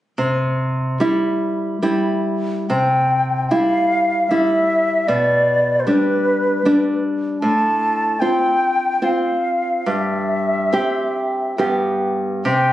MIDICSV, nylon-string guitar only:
0, 0, Header, 1, 2, 480
1, 0, Start_track
1, 0, Key_signature, 0, "major"
1, 0, Tempo, 820793
1, 102, Time_signature, 3, 2, 24, 8
1, 1059, Tempo, 881057
1, 1539, Tempo, 809717
1, 2499, Tempo, 777202
1, 4419, Tempo, 802139
1, 5379, Tempo, 857143
1, 7453, End_track
2, 0, Start_track
2, 0, Title_t, "Nylon-string guitar"
2, 0, Program_c, 0, 24
2, 105, Note_on_c, 0, 48, 38
2, 570, Note_off_c, 0, 48, 0
2, 585, Note_on_c, 0, 55, 32
2, 591, Note_on_c, 0, 64, 35
2, 1036, Note_off_c, 0, 55, 0
2, 1039, Note_off_c, 0, 64, 0
2, 1066, Note_on_c, 0, 55, 37
2, 1069, Note_on_c, 0, 64, 42
2, 1521, Note_off_c, 0, 55, 0
2, 1522, Note_off_c, 0, 64, 0
2, 1542, Note_on_c, 0, 48, 39
2, 2007, Note_off_c, 0, 48, 0
2, 2023, Note_on_c, 0, 55, 31
2, 2025, Note_on_c, 0, 64, 33
2, 2476, Note_off_c, 0, 55, 0
2, 2477, Note_off_c, 0, 64, 0
2, 2496, Note_on_c, 0, 55, 34
2, 2500, Note_on_c, 0, 64, 36
2, 2955, Note_off_c, 0, 55, 0
2, 2956, Note_off_c, 0, 64, 0
2, 2976, Note_on_c, 0, 47, 49
2, 3443, Note_off_c, 0, 47, 0
2, 3460, Note_on_c, 0, 55, 40
2, 3464, Note_on_c, 0, 62, 39
2, 3920, Note_off_c, 0, 55, 0
2, 3921, Note_off_c, 0, 62, 0
2, 3945, Note_on_c, 0, 55, 41
2, 3949, Note_on_c, 0, 62, 46
2, 4395, Note_off_c, 0, 55, 0
2, 4396, Note_off_c, 0, 62, 0
2, 4421, Note_on_c, 0, 45, 52
2, 4877, Note_off_c, 0, 45, 0
2, 4894, Note_on_c, 0, 60, 37
2, 4896, Note_on_c, 0, 65, 36
2, 5357, Note_off_c, 0, 60, 0
2, 5357, Note_off_c, 0, 65, 0
2, 5375, Note_on_c, 0, 60, 35
2, 5377, Note_on_c, 0, 65, 35
2, 5832, Note_off_c, 0, 60, 0
2, 5833, Note_off_c, 0, 65, 0
2, 5849, Note_on_c, 0, 43, 42
2, 6319, Note_off_c, 0, 43, 0
2, 6332, Note_on_c, 0, 60, 32
2, 6336, Note_on_c, 0, 67, 32
2, 6798, Note_off_c, 0, 60, 0
2, 6800, Note_off_c, 0, 67, 0
2, 6812, Note_on_c, 0, 43, 38
2, 6814, Note_on_c, 0, 59, 29
2, 6817, Note_on_c, 0, 67, 30
2, 7279, Note_off_c, 0, 59, 0
2, 7281, Note_off_c, 0, 67, 0
2, 7286, Note_off_c, 0, 43, 0
2, 7297, Note_on_c, 0, 48, 42
2, 7453, Note_off_c, 0, 48, 0
2, 7453, End_track
0, 0, End_of_file